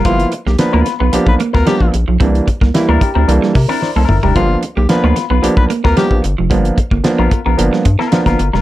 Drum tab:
HH |xxx-x-x-x-x-x-x-|xxx-x-x-x-o-----|x-x-x-x-x-x-x-x-|xxx-x-x-x-x-xxx-|
SD |---oo-o----oo---|---oo----o-oo---|----o-o----oo---|----o----o-ooo-o|
T2 |----------------|--------------o-|----------------|----------------|
FT |----------------|---------------o|----------------|----------------|
BD |o--------o-o-o--|o-oo--o---o-----|o--------o-o-o--|o-oo--o---o--o--|